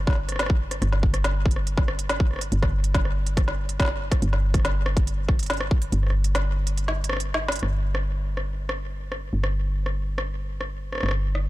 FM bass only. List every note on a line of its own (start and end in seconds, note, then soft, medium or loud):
0.00 0.80 G1 medium
0.82 2.50 G1 medium
2.52 4.20 G1 medium
4.22 5.90 G1 medium
5.92 7.60 G1 medium
7.63 9.31 G1 medium
9.33 11.01 G1 medium
11.03 11.49 G1 medium